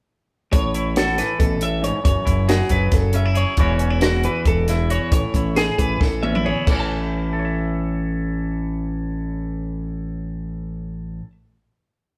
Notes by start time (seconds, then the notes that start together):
0.52 A1 A2 C#5, kick, closed hi-hat
0.74 E4, closed hi-hat
0.96 F#4 A4, snare, closed hi-hat
1.18 E3 B4, snare, closed hi-hat
1.38 A1 B2 A4, kick, closed hi-hat
1.61 A2 E5, closed hi-hat
1.82 G#2 C#5, closed hi-hat
2.04 F#1 F#2 C#5, kick, closed hi-hat
2.25 F#1 E4, kick, closed hi-hat
2.48 F#4 G#4, snare, closed hi-hat
2.69 F#1 F#3 B4, kick, closed hi-hat
2.92 F#1 A4, kick, snare, closed hi-hat
3.13 C#3 C#4 E5, closed hi-hat
3.25 E4
3.35 G#4 C#5, closed hi-hat
3.57 E1 E2 E3 C#4 E4 F#4 C#5, kick, closed hi-hat
3.79 C#4, closed hi-hat
3.90 E4
4.01 F#4, snare, closed hi-hat
4.23 E3 B4, closed hi-hat
4.45 E1 A4, kick, closed hi-hat
4.68 E2 E4 E5, snare, closed hi-hat
4.90 F#4 C#5, closed hi-hat
5.12 A1 A2 C#5, kick, closed hi-hat
5.34 A1 E4, kick, closed hi-hat
5.56 G#4, snare, closed hi-hat
5.78 A1 E3 B4, kick, closed hi-hat
6.00 A1 A4, kick, snare
6.23 E2 C#4 E5, high tom
6.35 E4, mid tom
6.45 G#4 C#5, mid tom
6.67 A1 A2 E3 A4, kick, crash
6.71 C#4 E4 C#5 E5
6.80 A5
7.33 A4
7.39 C#5
7.45 E5